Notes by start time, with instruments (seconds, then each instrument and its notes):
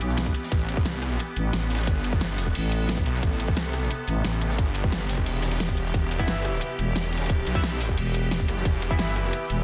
Already playing: synth drone E3 B3 G4
0.01 fm bass B1, closed hi-hat, ride, shaker
0.09 snare
0.17 snare, closed hi-hat, ride
0.26 kick, snare, closed hi-hat, shaker
0.34 closed hi-hat, ride, shaker
0.43 snare
0.52 detuned saw bass A1, synth drone C3 A4, kick, closed hi-hat, ride
0.69 closed hi-hat, ride, shaker
0.77 kick
0.85 detuned saw bass C2, snare, closed hi-hat, ride
1.02 cross-stick, closed hi-hat, ride, shaker
1.11 snare
1.19 closed hi-hat, ride
1.36 fm bass A1, closed hi-hat, ride, shaker
1.53 detuned saw bass A1, snare, closed hi-hat, ride
1.62 closed hi-hat, shaker
1.70 snare, closed hi-hat, ride, shaker
1.75 snare, ride
1.78 cross-stick, snare, ride
1.83 snare, ride
1.87 kick, closed hi-hat, ride
2.04 detuned saw bass G1, closed hi-hat, ride, shaker
2.13 kick
2.21 snare, closed hi-hat, ride
2.38 open hi-hat, ride, shaker
2.47 kick
2.55 fm bass A1, closed hi-hat, open hi-hat
2.72 closed hi-hat, ride, shaker
2.89 snare, closed hi-hat, ride
2.97 kick, snare, closed hi-hat, shaker
3.06 detuned saw bass B1, closed hi-hat, ride, shaker
3.15 snare
3.23 detuned saw bass A1, synth drone G4, kick, closed hi-hat, ride
3.40 closed hi-hat, ride, shaker
3.48 kick
3.56 detuned saw bass C2, snare, closed hi-hat, ride
3.73 cross-stick, closed hi-hat, ride, shaker
3.81 snare
3.90 closed hi-hat, ride
4.08 fm bass A1, closed hi-hat, ride, shaker
4.25 detuned saw bass A1, snare, closed hi-hat, ride
4.33 closed hi-hat, shaker
4.41 closed hi-hat, ride, shaker
4.50 cross-stick, snare
4.58 kick, closed hi-hat, ride
4.67 shaker
4.74 detuned saw bass G1, closed hi-hat, ride, shaker
4.84 kick
4.92 snare, closed hi-hat, ride
5.01 closed hi-hat
5.09 open hi-hat, ride, shaker
5.18 kick
5.26 detuned saw bass E1, closed hi-hat, open hi-hat
5.42 snare, closed hi-hat, ride, shaker
5.51 snare, closed hi-hat, ride
5.60 snare, closed hi-hat, ride
5.69 kick, snare, closed hi-hat, shaker
5.77 closed hi-hat, ride, shaker
5.86 snare
5.94 detuned saw bass E1, synth drone E3 B3, kick, closed hi-hat, ride
6.11 closed hi-hat, ride, shaker
6.19 synth stab E3 B3 E4, kick
6.27 detuned saw bass G1, snare, closed hi-hat, ride
6.45 cross-stick, closed hi-hat, ride, shaker
6.53 snare
6.61 closed hi-hat, ride
6.79 fm bass E1, closed hi-hat, ride, shaker
6.96 detuned saw bass E1, snare, closed hi-hat, ride
7.04 closed hi-hat, shaker
7.12 snare, closed hi-hat, ride, shaker
7.17 snare, ride
7.21 cross-stick, snare, ride
7.26 snare, ride
7.29 kick, closed hi-hat, ride
7.47 detuned saw bass B1, closed hi-hat, ride, shaker
7.55 synth stab E3 B3 E4, kick
7.63 snare, closed hi-hat, ride
7.81 open hi-hat, ride, shaker
7.89 kick
7.97 fm bass E1, closed hi-hat, open hi-hat
8.14 closed hi-hat, ride, shaker
8.31 snare, closed hi-hat, ride
8.40 kick, snare, closed hi-hat, shaker
8.48 detuned saw bass F#1, closed hi-hat, ride, shaker
8.57 snare
8.65 detuned saw bass E1, synth drone A3, kick, closed hi-hat, ride
8.82 closed hi-hat, ride, shaker
8.91 synth stab E3 B3 E4, kick
8.98 detuned saw bass G1, snare, closed hi-hat, ride
9.16 cross-stick, closed hi-hat, ride, shaker
9.25 snare
9.33 closed hi-hat, ride
9.50 fm bass E1, closed hi-hat, ride, shaker